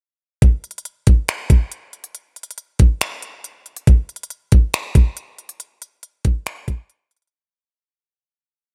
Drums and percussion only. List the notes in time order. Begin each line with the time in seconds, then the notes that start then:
0.42 kick, closed hi-hat
0.64 closed hi-hat
0.71 closed hi-hat
0.78 closed hi-hat
0.85 closed hi-hat
1.07 kick, closed hi-hat
1.28 finger snap, closed hi-hat
1.50 kick, closed hi-hat
1.72 closed hi-hat
1.93 closed hi-hat
2.04 closed hi-hat
2.15 closed hi-hat
2.36 closed hi-hat
2.43 closed hi-hat
2.51 closed hi-hat
2.58 closed hi-hat
2.79 kick, closed hi-hat
3.01 finger snap, closed hi-hat
3.22 closed hi-hat
3.44 closed hi-hat
3.66 closed hi-hat
3.76 closed hi-hat
3.87 kick, closed hi-hat
4.09 closed hi-hat
4.16 closed hi-hat
4.23 closed hi-hat
4.30 closed hi-hat
4.52 kick, closed hi-hat
4.74 finger snap, closed hi-hat
4.95 kick, closed hi-hat
5.17 closed hi-hat
5.38 closed hi-hat
5.49 closed hi-hat
5.60 closed hi-hat
5.82 closed hi-hat
6.03 closed hi-hat
6.25 kick, closed hi-hat
6.46 finger snap, closed hi-hat
6.68 kick, closed hi-hat
6.90 closed hi-hat
7.11 closed hi-hat
7.17 closed hi-hat
7.22 closed hi-hat
7.27 closed hi-hat